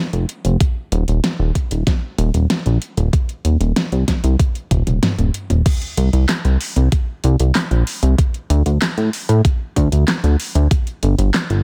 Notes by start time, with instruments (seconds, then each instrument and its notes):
0.13 analog synth bass F1, closed hi-hat
0.29 closed hi-hat
0.45 analog synth bass F1, closed hi-hat
0.60 kick, closed hi-hat
0.92 analog synth bass D#1, closed hi-hat
1.08 analog synth bass D#1, closed hi-hat
1.24 snare, closed hi-hat
1.39 analog synth bass D#1
1.55 kick, closed hi-hat
1.71 analog synth bass D#1, closed hi-hat
1.87 kick, snare, closed hi-hat
2.18 analog synth bass D#1, closed hi-hat
2.34 analog synth bass D#1, closed hi-hat
2.50 snare, closed hi-hat
2.66 analog synth bass A#1, closed hi-hat
2.82 closed hi-hat
2.97 analog synth bass D#1, closed hi-hat
3.13 kick, closed hi-hat
3.29 closed hi-hat
3.45 analog synth bass D#1, closed hi-hat
3.60 analog synth bass D#1, closed hi-hat
3.76 snare, closed hi-hat
3.92 analog synth bass C2, closed hi-hat
4.08 kick, snare, closed hi-hat
4.24 analog synth bass C2, closed hi-hat
4.39 kick, closed hi-hat
4.55 closed hi-hat
4.71 analog synth bass D#1, kick, closed hi-hat, high tom
4.87 analog synth bass D#1, closed hi-hat, high tom
5.03 snare, closed hi-hat, mid tom
5.18 analog synth bass D#1, closed hi-hat, mid tom
5.34 closed hi-hat
5.50 analog synth bass D#1, closed hi-hat, mid tom
5.66 kick, closed hi-hat, crash
5.82 closed hi-hat
5.97 analog synth bass C2, closed hi-hat
6.13 analog synth bass C2, closed hi-hat
6.29 snare, clap, closed hi-hat
6.45 analog synth bass C2, closed hi-hat
6.61 open hi-hat
6.76 analog synth bass C2, closed hi-hat
6.92 kick, closed hi-hat
7.24 analog synth bass C2, closed hi-hat
7.40 analog synth bass C2, closed hi-hat
7.55 snare, clap, closed hi-hat
7.71 analog synth bass A#1, closed hi-hat
7.87 open hi-hat
8.03 analog synth bass C2, closed hi-hat
8.18 kick, closed hi-hat
8.34 closed hi-hat
8.50 analog synth bass D2, closed hi-hat
8.66 analog synth bass D2, closed hi-hat
8.82 snare, clap, closed hi-hat
8.98 analog synth bass A2, closed hi-hat
9.13 open hi-hat
9.29 analog synth bass A2, closed hi-hat
9.45 kick, closed hi-hat
9.76 analog synth bass D2, kick, closed hi-hat
9.92 analog synth bass D2, closed hi-hat
10.08 snare, clap, closed hi-hat
10.24 analog synth bass D2, closed hi-hat
10.40 open hi-hat
10.55 analog synth bass D2, closed hi-hat
10.71 kick, closed hi-hat
10.87 closed hi-hat
11.03 analog synth bass G1, closed hi-hat
11.18 analog synth bass G1, closed hi-hat
11.34 snare, clap, closed hi-hat
11.50 analog synth bass G1, closed hi-hat